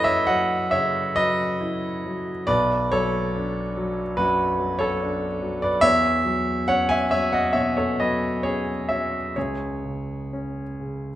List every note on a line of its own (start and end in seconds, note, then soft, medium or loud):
0.00 0.69 F#2 medium
0.00 0.10 F#3 soft
0.00 0.56 E4 soft
0.00 2.50 F#4 medium
0.00 2.51 A4 medium
0.00 1.17 B4 medium
0.00 0.05 C#5 medium
0.00 0.28 D#5 loud
0.04 0.27 C#5 medium
0.04 0.27 E5 loud
0.27 0.99 F#3 soft
0.27 0.69 D#5 medium
0.27 0.72 F#5 loud
0.71 1.42 C#3 soft
0.71 1.13 C#5 medium
0.71 1.15 E5 medium
1.16 1.86 F#3 soft
1.16 2.44 B4 medium
1.16 2.48 D#5 loud
1.60 2.31 E4 soft
2.06 2.49 F#3 soft
2.47 4.14 B1 medium
2.47 2.89 B4 medium
2.47 2.92 D5 loud
2.92 3.61 F#3 soft
2.92 4.15 A4 medium
2.92 4.18 C#5 loud
3.36 4.02 D4 medium
3.77 4.44 F#3 medium
4.17 4.85 F#2 soft
4.17 4.77 F#4 medium
4.17 4.80 B4 loud
4.60 5.27 F#3 medium
4.79 5.59 A4 medium
4.79 5.62 C#5 loud
5.02 5.68 D4 medium
5.42 5.83 F#3 soft
5.62 5.82 B4 medium
5.62 5.83 D5 medium
5.81 7.50 E2 medium
5.81 6.63 C#5 medium
5.81 6.66 E5 loud
6.25 6.93 F#3 soft
6.68 7.37 C#4 soft
6.68 6.88 C#5 medium
6.68 6.89 F#5 loud
6.89 7.09 E5 medium
6.89 7.10 G#5 loud
7.11 7.82 F#3 soft
7.11 7.31 C#5 medium
7.11 7.33 E5 medium
7.32 7.54 D#5 medium
7.32 7.55 F#5 medium
7.53 8.26 B2 soft
7.53 7.75 C#5 medium
7.53 7.76 E5 medium
7.77 7.98 A4 medium
7.77 7.99 C#5 medium
8.00 8.71 F#3 soft
8.00 8.41 B4 medium
8.00 8.44 D#5 medium
8.43 9.17 C#4 soft
8.43 8.86 G#4 medium
8.43 8.88 C#5 medium
8.89 9.37 F#3 soft
8.89 9.33 C#5 medium
8.89 9.36 E5 medium
9.36 11.15 C#2 soft
9.36 11.15 G#4 medium
9.36 11.15 C#5 medium
9.85 10.61 C#3 soft
10.33 11.08 C#4 soft
10.80 11.15 C#3 soft